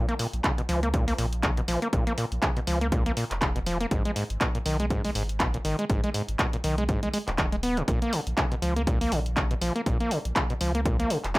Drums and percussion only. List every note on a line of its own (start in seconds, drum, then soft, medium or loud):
0.09 closed hi-hat soft
0.19 open hi-hat medium
0.33 closed hi-hat soft
0.44 kick loud
0.44 clap loud
0.44 closed hi-hat medium
0.58 closed hi-hat soft
0.69 open hi-hat loud
0.83 closed hi-hat soft
0.94 kick loud
0.94 closed hi-hat medium
1.08 open hi-hat medium
1.18 open hi-hat medium
1.33 closed hi-hat soft
1.43 kick loud
1.43 clap loud
1.43 closed hi-hat medium
1.57 closed hi-hat soft
1.68 open hi-hat loud
1.82 closed hi-hat soft
1.93 kick loud
1.93 closed hi-hat medium
2.07 closed hi-hat soft
2.18 open hi-hat medium
2.32 closed hi-hat soft
2.42 kick loud
2.42 clap loud
2.42 closed hi-hat medium
2.57 closed hi-hat soft
2.67 open hi-hat loud
2.81 closed hi-hat soft
2.92 kick loud
2.92 closed hi-hat medium
3.06 closed hi-hat soft
3.17 open hi-hat medium
3.31 clap soft
3.31 closed hi-hat soft
3.42 kick loud
3.42 clap loud
3.42 closed hi-hat medium
3.56 closed hi-hat soft
3.66 open hi-hat loud
3.81 closed hi-hat soft
3.91 kick loud
3.91 closed hi-hat medium
4.05 closed hi-hat soft
4.16 open hi-hat medium
4.30 closed hi-hat soft
4.41 kick loud
4.41 clap loud
4.41 closed hi-hat medium
4.55 closed hi-hat soft
4.66 open hi-hat loud
4.80 closed hi-hat soft
4.90 kick loud
4.90 closed hi-hat medium
5.05 open hi-hat medium
5.15 open hi-hat medium
5.29 closed hi-hat soft
5.40 kick loud
5.40 clap loud
5.40 closed hi-hat medium
5.54 closed hi-hat soft
5.65 open hi-hat medium
5.79 closed hi-hat soft
5.90 kick loud
5.90 closed hi-hat medium
6.04 closed hi-hat soft
6.14 open hi-hat medium
6.28 closed hi-hat soft
6.39 kick loud
6.39 clap loud
6.39 closed hi-hat medium
6.53 closed hi-hat soft
6.64 open hi-hat loud
6.78 closed hi-hat soft
6.89 kick loud
6.89 closed hi-hat medium
7.03 closed hi-hat soft
7.14 open hi-hat medium
7.28 clap soft
7.28 closed hi-hat soft
7.38 kick loud
7.38 clap loud
7.38 closed hi-hat medium
7.52 closed hi-hat soft
7.63 open hi-hat loud
7.77 closed hi-hat soft
7.88 kick loud
7.88 closed hi-hat medium
8.02 closed hi-hat soft
8.13 open hi-hat loud
8.27 closed hi-hat soft
8.38 kick loud
8.38 clap loud
8.38 closed hi-hat medium
8.52 closed hi-hat soft
8.62 open hi-hat loud
8.76 closed hi-hat soft
8.87 kick loud
8.87 closed hi-hat medium
9.01 open hi-hat medium
9.12 open hi-hat loud
9.26 closed hi-hat soft
9.37 kick loud
9.37 clap loud
9.37 closed hi-hat medium
9.51 closed hi-hat soft
9.62 open hi-hat loud
9.76 closed hi-hat soft
9.86 kick loud
9.86 closed hi-hat medium
10.00 closed hi-hat soft
10.11 open hi-hat loud
10.25 closed hi-hat soft
10.36 kick loud
10.36 clap loud
10.36 closed hi-hat medium
10.50 closed hi-hat soft
10.61 open hi-hat loud
10.75 closed hi-hat soft
10.85 kick loud
10.85 closed hi-hat medium
11.00 closed hi-hat soft
11.10 open hi-hat loud
11.24 clap soft
11.24 closed hi-hat soft
11.35 kick loud
11.35 clap loud
11.35 closed hi-hat medium